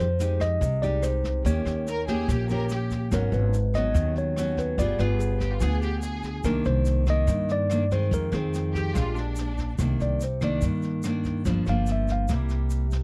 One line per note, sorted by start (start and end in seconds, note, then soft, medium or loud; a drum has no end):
0.00 0.57 F2 loud
0.00 0.60 F3 medium
0.00 0.41 C5 loud
0.00 shaker soft
0.19 0.61 G#3 soft
0.19 0.62 D#4 medium
0.19 0.62 G4 medium
0.19 snare soft
0.19 shaker medium
0.40 0.84 D#5 loud
0.40 kick soft
0.40 cross-stick medium
0.40 snare soft
0.40 shaker soft
0.61 1.41 C2 medium
0.61 1.43 C3 medium
0.61 kick medium
0.61 snare soft
0.61 shaker medium
0.82 1.42 G#3 medium
0.82 1.42 D#4 medium
0.82 1.42 G4 medium
0.82 1.04 D5 medium
0.82 snare soft
0.82 shaker soft
1.02 1.42 C5 medium
1.02 cross-stick medium
1.02 snare soft
1.02 shaker medium
1.24 kick soft
1.24 snare soft
1.24 shaker soft
1.44 1.64 D#2 medium
1.44 2.26 D#3 medium
1.44 1.87 A#3 medium
1.44 1.87 C#4 medium
1.44 1.87 G4 medium
1.44 2.25 C#5 medium
1.44 kick medium
1.44 snare soft
1.44 shaker medium
1.65 2.24 D#2 medium
1.65 cross-stick medium
1.65 snare soft
1.65 shaker soft
1.87 2.07 A#4 loud
1.87 snare soft
1.87 shaker medium
2.08 2.46 A#3 medium
2.08 2.47 C#4 medium
2.08 2.47 G4 medium
2.08 2.27 G#4 medium
2.08 kick soft
2.08 snare soft
2.08 shaker soft
2.28 3.08 A#1 loud
2.28 3.10 A#2 soft
2.28 2.50 G4 loud
2.28 kick medium
2.28 cross-stick medium
2.28 snare soft
2.28 shaker medium
2.49 3.09 A#3 medium
2.49 3.09 C#4 medium
2.49 3.10 G4 medium
2.49 2.69 A#4 loud
2.49 snare soft
2.49 shaker soft
2.69 3.00 G4 medium
2.69 snare soft
2.69 shaker medium
2.91 kick soft
2.91 snare soft
2.91 shaker soft
3.11 3.31 G#1 medium
3.11 3.93 G#2 medium
3.11 3.54 F#3 medium
3.11 3.53 B3 medium
3.11 3.54 C#4 medium
3.11 3.32 A#4 medium
3.11 kick medium
3.11 cross-stick medium
3.11 snare soft
3.11 shaker medium
3.32 3.91 G#1 loud
3.32 3.76 B4 medium
3.32 snare soft
3.32 shaker soft
3.53 snare soft
3.53 shaker medium
3.74 4.35 F#3 medium
3.74 4.35 B3 medium
3.74 4.35 C#4 medium
3.74 4.14 D#5 loud
3.74 kick soft
3.74 cross-stick medium
3.74 snare soft
3.74 shaker soft
3.94 4.74 D#2 loud
3.94 4.78 D#3 soft
3.94 kick medium
3.94 snare soft
3.94 shaker medium
4.16 4.60 C#5 medium
4.16 snare soft
4.16 shaker soft
4.36 4.78 F#3 medium
4.36 4.78 B3 medium
4.36 4.78 C#4 medium
4.36 cross-stick medium
4.36 snare soft
4.36 shaker medium
4.57 4.80 B4 medium
4.57 kick soft
4.57 snare soft
4.57 shaker soft
4.78 4.98 G1 loud
4.78 5.60 G3 medium
4.78 4.97 B3 medium
4.78 4.97 F4 medium
4.78 4.97 G#4 medium
4.78 5.00 D5 medium
4.78 kick medium
4.78 snare soft
4.78 shaker medium
4.98 5.58 G1 medium
4.98 5.59 B3 medium
4.98 5.59 F4 medium
4.98 5.59 G#4 medium
4.98 5.79 B4 medium
4.98 cross-stick medium
4.98 snare soft
4.98 shaker soft
5.19 snare soft
5.19 shaker medium
5.40 5.50 G4 medium
5.40 kick soft
5.40 snare soft
5.40 shaker soft
5.52 5.62 F4 medium
5.60 6.41 D2 loud
5.60 6.43 D3 medium
5.60 6.42 B3 medium
5.60 6.42 F4 medium
5.60 5.82 G#4 loud
5.60 6.43 G#4 medium
5.60 kick medium
5.60 cross-stick medium
5.60 snare soft
5.60 shaker medium
5.82 6.03 G4 loud
5.82 snare soft
5.82 shaker soft
6.02 6.32 G#4 medium
6.02 snare soft
6.02 shaker medium
6.23 kick soft
6.23 snare soft
6.23 shaker soft
6.44 6.64 C2 medium
6.44 7.26 C3 medium
6.44 7.04 D#3 medium
6.44 7.04 A#3 medium
6.44 7.05 D4 medium
6.44 6.67 A#4 medium
6.44 kick medium
6.44 cross-stick medium
6.44 snare soft
6.44 shaker medium
6.65 7.25 C2 loud
6.65 7.05 C5 medium
6.65 snare soft
6.65 shaker soft
6.85 snare soft
6.85 shaker medium
7.06 7.67 D#3 medium
7.06 7.67 A#3 medium
7.06 7.52 D#5 loud
7.06 kick soft
7.06 cross-stick medium
7.06 snare soft
7.06 shaker soft
7.27 8.08 G2 loud
7.27 8.10 G2 medium
7.27 kick medium
7.27 snare soft
7.27 shaker medium
7.48 7.90 D5 loud
7.48 snare soft
7.48 shaker soft
7.70 7.83 D#3 medium
7.70 7.83 A#3 medium
7.70 7.84 D4 medium
7.70 cross-stick medium
7.70 snare soft
7.70 shaker medium
7.91 8.30 D#3 medium
7.91 8.30 G#3 medium
7.91 8.30 C4 medium
7.91 8.11 C5 medium
7.91 kick soft
7.91 snare soft
7.91 shaker soft
8.11 8.93 F2 medium
8.11 8.31 F2 loud
8.11 8.33 A#4 loud
8.11 kick medium
8.11 snare soft
8.11 shaker medium
8.32 8.92 F2 loud
8.32 8.92 D#3 medium
8.32 8.92 G#3 medium
8.32 8.93 C4 medium
8.32 9.13 G#4 medium
8.32 cross-stick medium
8.32 snare soft
8.32 shaker soft
8.54 snare soft
8.54 shaker medium
8.74 8.94 G4 loud
8.74 kick soft
8.74 snare soft
8.74 shaker soft
8.95 9.75 A#1 loud
8.95 9.77 A#2 medium
8.95 9.52 G#3 medium
8.95 9.52 D4 medium
8.95 9.17 F4 loud
8.95 9.52 G4 medium
8.95 kick medium
8.95 cross-stick medium
8.95 snare soft
8.95 shaker medium
9.16 9.80 D4 medium
9.16 snare soft
9.16 shaker soft
9.36 snare soft
9.36 shaker medium
9.58 kick soft
9.58 snare soft
9.58 shaker soft
9.78 9.98 C2 loud
9.78 10.61 C3 medium
9.78 10.20 D#3 soft
9.78 10.21 A#3 medium
9.78 10.21 D4 medium
9.78 kick medium
9.78 cross-stick medium
9.78 snare soft
9.78 shaker medium
10.00 10.59 C2 medium
10.00 10.21 D5 medium
10.00 snare soft
10.00 shaker soft
10.21 10.43 C5 medium
10.21 snare soft
10.21 shaker medium
10.41 11.01 D#3 medium
10.41 11.01 A#3 medium
10.41 11.02 D4 medium
10.41 10.63 D5 medium
10.41 kick soft
10.41 cross-stick medium
10.41 snare soft
10.41 shaker soft
10.62 11.42 G2 medium
10.62 11.45 G2 soft
10.62 kick medium
10.62 snare soft
10.62 shaker medium
10.82 snare soft
10.82 shaker soft
11.03 11.45 D#3 medium
11.03 11.45 A#3 medium
11.03 11.45 D4 medium
11.03 cross-stick medium
11.03 snare soft
11.03 shaker medium
11.24 kick soft
11.24 snare soft
11.24 shaker soft
11.45 11.65 G1 medium
11.45 12.28 G2 medium
11.45 11.64 F3 medium
11.45 11.64 A#3 medium
11.45 11.64 D4 medium
11.45 kick medium
11.45 snare soft
11.45 shaker medium
11.66 12.26 G1 medium
11.66 12.27 F3 medium
11.66 12.27 A#3 medium
11.66 12.27 D4 medium
11.66 11.89 F5 medium
11.66 cross-stick medium
11.66 snare soft
11.66 shaker soft
11.86 snare soft
11.86 shaker medium
11.92 12.10 E5 medium
12.08 kick soft
12.08 snare soft
12.08 shaker soft
12.12 12.31 F5 medium
12.28 13.03 C2 medium
12.28 13.03 C3 medium
12.28 12.86 G3 medium
12.28 12.86 A#3 medium
12.28 12.86 E4 medium
12.28 kick medium
12.28 cross-stick medium
12.28 snare soft
12.28 shaker medium
12.49 snare soft
12.49 shaker soft
12.70 snare soft
12.70 shaker medium
12.91 kick soft
12.91 snare soft
12.91 shaker soft